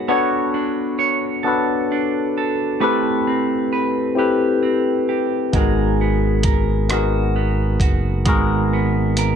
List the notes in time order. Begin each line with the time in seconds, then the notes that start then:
Already playing: B3 D#4 F#4 G#4 C#5
0.08 B3 D4 F#4 A4 C#5
0.54 D4
0.99 C#5
1.43 B3 D4 F#4 A4
1.48 B4
1.92 D4
2.38 A4
2.80 A3 C4 E4 G4 A4 B4
3.27 C4
3.73 B4
4.15 C4 E4 G4 A4 B4
4.63 C4
5.09 G4
5.53 G#1 G#3 B3 D#4 F#4 G#4 A#4, kick, closed hi-hat
5.57 A#4
6.01 B3
6.43 A#4, kick, closed hi-hat
6.89 B3 D#4 F#4 G#4, cross-stick, closed hi-hat
6.93 A#4
7.36 B3
7.80 F#1 F#4, kick, closed hi-hat
8.25 G#1 G#3 B3 D#4 F#4 G#4 A#4, kick, closed hi-hat
8.73 B3
9.17 A#4, closed hi-hat